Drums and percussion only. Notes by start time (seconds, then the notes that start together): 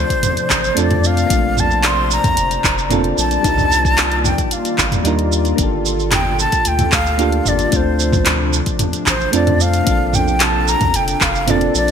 0.10 kick, closed hi-hat, shaker
0.23 closed hi-hat, mid tom, shaker
0.37 closed hi-hat, shaker
0.50 kick, clap, shaker
0.64 shaker
0.77 closed hi-hat, shaker
0.91 closed hi-hat, mid tom
1.04 shaker
1.17 closed hi-hat, shaker
1.30 kick, closed hi-hat, shaker
1.57 mid tom, shaker
1.71 shaker
1.84 clap, closed hi-hat, shaker
2.11 shaker
2.24 kick, closed hi-hat, mid tom, shaker
2.37 closed hi-hat, shaker
2.51 closed hi-hat, shaker
2.64 kick, clap, shaker
2.78 shaker
2.91 closed hi-hat, mid tom, shaker
3.04 closed hi-hat
3.18 shaker
3.31 closed hi-hat, shaker
3.44 kick, closed hi-hat, shaker
3.58 mid tom, shaker
3.72 shaker
3.85 kick, shaker
3.98 clap, closed hi-hat, shaker
4.12 closed hi-hat
4.24 mid tom, shaker
4.38 kick, closed hi-hat, shaker
4.51 closed hi-hat, shaker
4.65 closed hi-hat, shaker
4.78 kick, clap, shaker
4.92 closed hi-hat, mid tom, shaker
5.05 closed hi-hat, shaker
5.19 closed hi-hat
5.32 shaker
5.45 closed hi-hat, shaker
5.58 kick, closed hi-hat, shaker
5.86 shaker
6.00 shaker
6.12 clap, closed hi-hat, mid tom, shaker
6.39 shaker
6.52 kick, closed hi-hat, shaker
6.65 closed hi-hat, shaker
6.79 closed hi-hat, mid tom, shaker
6.92 kick, clap, shaker
7.06 shaker
7.19 closed hi-hat, shaker
7.32 closed hi-hat
7.45 mid tom, shaker
7.59 closed hi-hat, shaker
7.72 kick, closed hi-hat, shaker
7.99 shaker
8.12 kick, mid tom, shaker
8.26 clap, closed hi-hat, shaker
8.53 shaker
8.66 kick, closed hi-hat, shaker
8.79 closed hi-hat, mid tom, shaker
8.93 closed hi-hat, shaker
9.06 kick, clap, shaker
9.21 shaker
9.33 closed hi-hat, shaker
9.47 closed hi-hat, mid tom
9.60 shaker
9.73 closed hi-hat, shaker
9.87 kick, closed hi-hat, shaker
10.13 mid tom, shaker
10.28 shaker
10.40 clap, closed hi-hat, shaker
10.68 shaker
10.81 kick, closed hi-hat, mid tom, shaker
10.94 closed hi-hat, shaker
11.08 closed hi-hat, shaker
11.21 kick, clap, shaker
11.35 shaker
11.48 closed hi-hat, mid tom, shaker
11.61 closed hi-hat
11.75 shaker